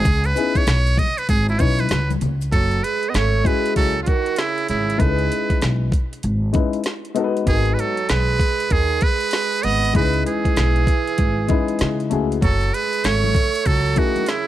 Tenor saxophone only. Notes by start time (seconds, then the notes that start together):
2.53 F#3
2.84 G#3
3.10 B3
3.15 A3
3.46 G#3
3.76 F#3
4.03 C#3
4.08 D#3
4.38 C#3
4.69 C#3
5.00 G#3
7.47 D#3
7.73 G#3
7.77 F#3
8.08 G#3
8.70 D#3
9.02 G#3
9.64 B3
9.96 G#3
10.27 E3
12.43 F#3
12.73 G#3
13.04 A3
13.67 F#3
13.98 D#3
14.28 C#3